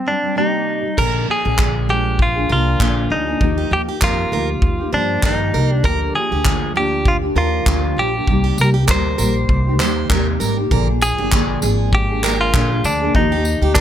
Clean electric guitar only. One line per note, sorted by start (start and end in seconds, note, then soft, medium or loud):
0.00 0.63 C4 medium
0.08 0.36 D4 medium
0.38 1.00 D#4 medium
0.99 1.27 A#4 medium
1.31 1.90 G#4 medium
1.90 2.21 G4 medium
2.22 2.51 F4 medium
2.52 3.14 F4 medium
3.12 3.74 D#4 medium
3.73 3.81 G4 medium
4.04 4.90 F4 medium
4.94 5.25 D4 medium
5.26 5.70 D#4 medium
5.70 5.87 D4 medium
5.85 6.13 A#4 medium
6.15 6.72 G#4 medium
6.77 7.08 G4 medium
7.08 7.16 F4 medium
7.38 8.00 F4 medium
7.99 8.61 G4 medium
8.61 8.69 A#4 medium
8.91 10.38 C5 loud
11.02 11.59 G#4 medium
11.95 12.40 G4 loud
12.41 12.86 F4 medium
12.85 13.15 D4 medium
13.16 13.72 D#4 medium
13.75 13.81 D#4 medium